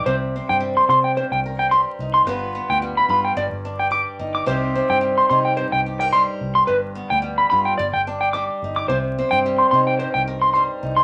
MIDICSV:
0, 0, Header, 1, 6, 480
1, 0, Start_track
1, 0, Key_signature, -3, "minor"
1, 0, Tempo, 551471
1, 49, Time_signature, 4, 2, 24, 8
1, 9607, End_track
2, 0, Start_track
2, 0, Title_t, "Clean electric guitar"
2, 0, Program_c, 0, 27
2, 53, Note_on_c, 0, 72, 82
2, 128, Note_off_c, 0, 72, 0
2, 430, Note_on_c, 0, 79, 80
2, 491, Note_off_c, 0, 79, 0
2, 668, Note_on_c, 0, 84, 69
2, 730, Note_off_c, 0, 84, 0
2, 779, Note_on_c, 0, 84, 94
2, 854, Note_off_c, 0, 84, 0
2, 906, Note_on_c, 0, 79, 64
2, 968, Note_off_c, 0, 79, 0
2, 1018, Note_on_c, 0, 72, 76
2, 1093, Note_off_c, 0, 72, 0
2, 1148, Note_on_c, 0, 79, 71
2, 1210, Note_off_c, 0, 79, 0
2, 1385, Note_on_c, 0, 79, 67
2, 1448, Note_off_c, 0, 79, 0
2, 1492, Note_on_c, 0, 84, 89
2, 1568, Note_off_c, 0, 84, 0
2, 1861, Note_on_c, 0, 84, 96
2, 1925, Note_off_c, 0, 84, 0
2, 2349, Note_on_c, 0, 79, 93
2, 2411, Note_off_c, 0, 79, 0
2, 2588, Note_on_c, 0, 83, 73
2, 2650, Note_off_c, 0, 83, 0
2, 2701, Note_on_c, 0, 83, 81
2, 2775, Note_off_c, 0, 83, 0
2, 2825, Note_on_c, 0, 79, 66
2, 2888, Note_off_c, 0, 79, 0
2, 2934, Note_on_c, 0, 74, 69
2, 3010, Note_off_c, 0, 74, 0
2, 3303, Note_on_c, 0, 79, 55
2, 3367, Note_off_c, 0, 79, 0
2, 3410, Note_on_c, 0, 86, 88
2, 3487, Note_off_c, 0, 86, 0
2, 3783, Note_on_c, 0, 86, 89
2, 3847, Note_off_c, 0, 86, 0
2, 3893, Note_on_c, 0, 72, 69
2, 3970, Note_off_c, 0, 72, 0
2, 4263, Note_on_c, 0, 79, 78
2, 4326, Note_off_c, 0, 79, 0
2, 4505, Note_on_c, 0, 84, 64
2, 4568, Note_off_c, 0, 84, 0
2, 4609, Note_on_c, 0, 84, 89
2, 4687, Note_off_c, 0, 84, 0
2, 4742, Note_on_c, 0, 79, 61
2, 4806, Note_off_c, 0, 79, 0
2, 4848, Note_on_c, 0, 72, 71
2, 4926, Note_off_c, 0, 72, 0
2, 4982, Note_on_c, 0, 79, 75
2, 5046, Note_off_c, 0, 79, 0
2, 5221, Note_on_c, 0, 79, 61
2, 5285, Note_off_c, 0, 79, 0
2, 5332, Note_on_c, 0, 84, 90
2, 5409, Note_off_c, 0, 84, 0
2, 5701, Note_on_c, 0, 84, 94
2, 5766, Note_off_c, 0, 84, 0
2, 5806, Note_on_c, 0, 71, 83
2, 5885, Note_off_c, 0, 71, 0
2, 6182, Note_on_c, 0, 79, 89
2, 6246, Note_off_c, 0, 79, 0
2, 6423, Note_on_c, 0, 83, 74
2, 6486, Note_off_c, 0, 83, 0
2, 6527, Note_on_c, 0, 83, 93
2, 6605, Note_off_c, 0, 83, 0
2, 6661, Note_on_c, 0, 79, 63
2, 6725, Note_off_c, 0, 79, 0
2, 6768, Note_on_c, 0, 74, 75
2, 6846, Note_off_c, 0, 74, 0
2, 6906, Note_on_c, 0, 79, 77
2, 6969, Note_off_c, 0, 79, 0
2, 7143, Note_on_c, 0, 79, 57
2, 7206, Note_off_c, 0, 79, 0
2, 7252, Note_on_c, 0, 86, 93
2, 7329, Note_off_c, 0, 86, 0
2, 7627, Note_on_c, 0, 86, 95
2, 7689, Note_off_c, 0, 86, 0
2, 7732, Note_on_c, 0, 72, 83
2, 7809, Note_off_c, 0, 72, 0
2, 8102, Note_on_c, 0, 79, 98
2, 8166, Note_off_c, 0, 79, 0
2, 8343, Note_on_c, 0, 84, 67
2, 8406, Note_off_c, 0, 84, 0
2, 8453, Note_on_c, 0, 84, 86
2, 8530, Note_off_c, 0, 84, 0
2, 8590, Note_on_c, 0, 79, 63
2, 8651, Note_off_c, 0, 79, 0
2, 8697, Note_on_c, 0, 72, 75
2, 8773, Note_off_c, 0, 72, 0
2, 8825, Note_on_c, 0, 79, 77
2, 8888, Note_off_c, 0, 79, 0
2, 9065, Note_on_c, 0, 84, 63
2, 9129, Note_off_c, 0, 84, 0
2, 9171, Note_on_c, 0, 84, 87
2, 9248, Note_off_c, 0, 84, 0
2, 9544, Note_on_c, 0, 84, 86
2, 9607, Note_off_c, 0, 84, 0
2, 9607, End_track
3, 0, Start_track
3, 0, Title_t, "Steel-string acoustic guitar"
3, 0, Program_c, 1, 25
3, 0, Note_on_c, 1, 55, 64
3, 55, Note_on_c, 1, 48, 70
3, 311, Note_on_c, 1, 60, 52
3, 522, Note_off_c, 1, 55, 0
3, 526, Note_on_c, 1, 55, 59
3, 1014, Note_off_c, 1, 48, 0
3, 1019, Note_on_c, 1, 43, 65
3, 1268, Note_on_c, 1, 70, 50
3, 1492, Note_off_c, 1, 55, 0
3, 1495, Note_on_c, 1, 55, 61
3, 1744, Note_on_c, 1, 63, 51
3, 1952, Note_off_c, 1, 63, 0
3, 1954, Note_off_c, 1, 70, 0
3, 1956, Note_off_c, 1, 60, 0
3, 1964, Note_off_c, 1, 43, 0
3, 1973, Note_off_c, 1, 55, 0
3, 1973, Note_on_c, 1, 43, 77
3, 1980, Note_on_c, 1, 59, 58
3, 1986, Note_on_c, 1, 65, 59
3, 1992, Note_on_c, 1, 71, 67
3, 2208, Note_off_c, 1, 59, 0
3, 2219, Note_on_c, 1, 59, 58
3, 2454, Note_on_c, 1, 55, 57
3, 2681, Note_off_c, 1, 65, 0
3, 2691, Note_on_c, 1, 65, 55
3, 2906, Note_off_c, 1, 65, 0
3, 2909, Note_off_c, 1, 59, 0
3, 2916, Note_off_c, 1, 71, 0
3, 2920, Note_off_c, 1, 43, 0
3, 2930, Note_on_c, 1, 43, 82
3, 3176, Note_on_c, 1, 62, 50
3, 3399, Note_off_c, 1, 55, 0
3, 3402, Note_on_c, 1, 55, 57
3, 3650, Note_on_c, 1, 63, 52
3, 3865, Note_off_c, 1, 63, 0
3, 3868, Note_off_c, 1, 62, 0
3, 3884, Note_on_c, 1, 48, 71
3, 3885, Note_off_c, 1, 55, 0
3, 3889, Note_on_c, 1, 55, 54
3, 3891, Note_off_c, 1, 43, 0
3, 3896, Note_on_c, 1, 60, 63
3, 3903, Note_on_c, 1, 63, 56
3, 3909, Note_on_c, 1, 67, 65
3, 4127, Note_off_c, 1, 60, 0
3, 4138, Note_on_c, 1, 60, 59
3, 4356, Note_off_c, 1, 55, 0
3, 4359, Note_on_c, 1, 55, 56
3, 4609, Note_off_c, 1, 63, 0
3, 4619, Note_on_c, 1, 63, 61
3, 4847, Note_on_c, 1, 43, 68
3, 4849, Note_off_c, 1, 48, 0
3, 5099, Note_off_c, 1, 67, 0
3, 5103, Note_on_c, 1, 67, 52
3, 5226, Note_off_c, 1, 67, 0
3, 5226, Note_on_c, 1, 70, 46
3, 5331, Note_off_c, 1, 55, 0
3, 5335, Note_on_c, 1, 55, 66
3, 5575, Note_off_c, 1, 63, 0
3, 5789, Note_off_c, 1, 60, 0
3, 5800, Note_off_c, 1, 43, 0
3, 5810, Note_on_c, 1, 43, 70
3, 5813, Note_off_c, 1, 70, 0
3, 6052, Note_on_c, 1, 59, 55
3, 6280, Note_off_c, 1, 55, 0
3, 6284, Note_on_c, 1, 55, 57
3, 6539, Note_on_c, 1, 65, 53
3, 6746, Note_off_c, 1, 59, 0
3, 6749, Note_off_c, 1, 65, 0
3, 6771, Note_off_c, 1, 43, 0
3, 7025, Note_on_c, 1, 62, 56
3, 7255, Note_off_c, 1, 55, 0
3, 7258, Note_on_c, 1, 55, 64
3, 7520, Note_on_c, 1, 63, 51
3, 7713, Note_off_c, 1, 62, 0
3, 7720, Note_off_c, 1, 63, 0
3, 7742, Note_on_c, 1, 48, 72
3, 7995, Note_on_c, 1, 60, 62
3, 8229, Note_off_c, 1, 55, 0
3, 8232, Note_on_c, 1, 55, 59
3, 8476, Note_on_c, 1, 63, 59
3, 8698, Note_off_c, 1, 48, 0
3, 8701, Note_on_c, 1, 43, 70
3, 8943, Note_on_c, 1, 70, 57
3, 9182, Note_off_c, 1, 55, 0
3, 9185, Note_on_c, 1, 55, 59
3, 9414, Note_off_c, 1, 63, 0
3, 9425, Note_on_c, 1, 63, 52
3, 9607, Note_off_c, 1, 43, 0
3, 9607, Note_off_c, 1, 55, 0
3, 9607, Note_off_c, 1, 60, 0
3, 9607, Note_off_c, 1, 63, 0
3, 9607, Note_off_c, 1, 70, 0
3, 9607, End_track
4, 0, Start_track
4, 0, Title_t, "Fingered electric bass"
4, 0, Program_c, 2, 33
4, 52, Note_on_c, 2, 36, 92
4, 341, Note_off_c, 2, 36, 0
4, 429, Note_on_c, 2, 43, 81
4, 698, Note_off_c, 2, 43, 0
4, 769, Note_on_c, 2, 48, 91
4, 1060, Note_off_c, 2, 48, 0
4, 1143, Note_on_c, 2, 36, 79
4, 1602, Note_off_c, 2, 36, 0
4, 1732, Note_on_c, 2, 36, 70
4, 1919, Note_off_c, 2, 36, 0
4, 1965, Note_on_c, 2, 31, 102
4, 2257, Note_off_c, 2, 31, 0
4, 2344, Note_on_c, 2, 38, 72
4, 2616, Note_off_c, 2, 38, 0
4, 2686, Note_on_c, 2, 43, 89
4, 2876, Note_off_c, 2, 43, 0
4, 2927, Note_on_c, 2, 31, 101
4, 3031, Note_off_c, 2, 31, 0
4, 3060, Note_on_c, 2, 31, 72
4, 3521, Note_off_c, 2, 31, 0
4, 3649, Note_on_c, 2, 31, 73
4, 3837, Note_off_c, 2, 31, 0
4, 3889, Note_on_c, 2, 36, 101
4, 4180, Note_off_c, 2, 36, 0
4, 4261, Note_on_c, 2, 43, 72
4, 4534, Note_off_c, 2, 43, 0
4, 4615, Note_on_c, 2, 48, 90
4, 4903, Note_off_c, 2, 48, 0
4, 4984, Note_on_c, 2, 36, 67
4, 5443, Note_off_c, 2, 36, 0
4, 5577, Note_on_c, 2, 36, 73
4, 5762, Note_off_c, 2, 36, 0
4, 5819, Note_on_c, 2, 31, 84
4, 6106, Note_off_c, 2, 31, 0
4, 6188, Note_on_c, 2, 38, 83
4, 6458, Note_off_c, 2, 38, 0
4, 6548, Note_on_c, 2, 43, 96
4, 6729, Note_off_c, 2, 43, 0
4, 6784, Note_on_c, 2, 31, 110
4, 6882, Note_off_c, 2, 31, 0
4, 6922, Note_on_c, 2, 31, 77
4, 7374, Note_off_c, 2, 31, 0
4, 7504, Note_on_c, 2, 31, 76
4, 7687, Note_off_c, 2, 31, 0
4, 7736, Note_on_c, 2, 36, 95
4, 8024, Note_off_c, 2, 36, 0
4, 8111, Note_on_c, 2, 43, 80
4, 8380, Note_off_c, 2, 43, 0
4, 8463, Note_on_c, 2, 48, 99
4, 8749, Note_off_c, 2, 48, 0
4, 8831, Note_on_c, 2, 36, 73
4, 9288, Note_off_c, 2, 36, 0
4, 9426, Note_on_c, 2, 36, 81
4, 9607, Note_off_c, 2, 36, 0
4, 9607, End_track
5, 0, Start_track
5, 0, Title_t, "Muted clean electric guitar strokes"
5, 1976, Note_on_c, 9, 29, 77
5, 2063, Note_off_c, 9, 29, 0
5, 9607, End_track
6, 0, Start_track
6, 0, Title_t, "Muted steel-string acoustic guitar strokes"
6, 786, Note_on_c, 9, 29, 56
6, 873, Note_off_c, 9, 29, 0
6, 1977, Note_on_c, 9, 29, 50
6, 2064, Note_off_c, 9, 29, 0
6, 6783, Note_on_c, 9, 29, 71
6, 6870, Note_off_c, 9, 29, 0
6, 9607, End_track
0, 0, End_of_file